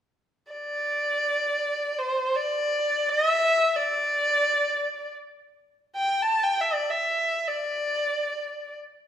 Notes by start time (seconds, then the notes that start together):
0.52 D5
1.99 C5
2.36 D5
3.09 D#5
3.28 E5
3.76 D5
5.96 G5
6.22 A5
6.43 G5
6.61 E5
6.73 D5
6.90 E5
7.48 D5